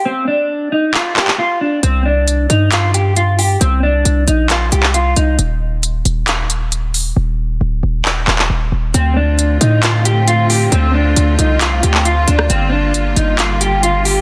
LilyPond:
<<
  \new Staff \with { instrumentName = "Clean electric guitar" } { \time 4/4 \key d \phrygian \tempo 4 = 135 c'8 d'4 ees'8 f'8 g'8 f'8 d'8 | c'8 d'4 ees'8 f'8 g'8 f'8 g'8 | c'8 d'4 ees'8 f'8 g'8 f'8 ees'8 | r1 |
r1 | c'8 d'4 ees'8 f'8 g'8 f'8 g'8 | c'8 d'4 ees'8 f'8 g'8 f'8 d'8 | c'8 d'4 ees'8 f'8 g'8 f'8 g'8 | }
  \new Staff \with { instrumentName = "String section" } { \time 4/4 \key d \phrygian << { r1 | r1 | r1 | r1 |
r1 | f'1~ | f'1~ | f'1 | } \\ { r1 | r1 | r1 | r1 |
r1 | <d a c'>1~ | <d a c'>1 | <d g bes>1 | } >> }
  \new Staff \with { instrumentName = "808-style bass" } { \clef bass \time 4/4 \key d \phrygian r1 | c,4. g,2~ g,8 | c,4 c,8 bes,,4 c,4 c,8 | ees,,4. ees,,2~ ees,,8 |
ees,,4 d,,8 ees,,4 ees,,8 ees,,8 ees,,8 | d,4. a,2~ a,8 | d,4 d,8 c,4 d,4 d,8 | g,,4. g,,2~ g,,8 | }
  \new DrumStaff \with { instrumentName = "Drums" } \drummode { \time 4/4 r4 r4 hc8 hc16 hc16 r4 | hh4 hh8 hh8 <hc hh>8 hh8 hh8 hho8 | hh4 hh8 hh8 <hc hh>8 hh16 hc16 hh8 hh8 | hh4 hh8 hh8 <hc hh>8 hh8 hh8 hho8 |
r4 r4 hc8 hc16 hc16 r4 | hh4 hh8 hh8 <hc hh>8 hh8 hh8 hho8 | hh4 hh8 hh8 <hc hh>8 hh16 hc16 hh8 hh16 ss16 | hh4 hh8 hh8 <hc hh>8 hh8 hh8 hho8 | }
>>